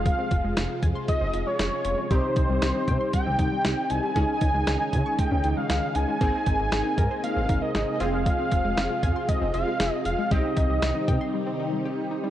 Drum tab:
HH |xxxxxxxx|xxxxxxxx|xxxxxxxx|xxxxxxxx|
SD |--o---o-|--o---o-|--o---o-|--o---o-|
BD |oo-oo---|oo-ooo--|oo-oo---|oo-o-o--|

HH |xxxxxxxx|xxxx----|
SD |--o---o-|--o-----|
BD |oo-oo---|oo-o----|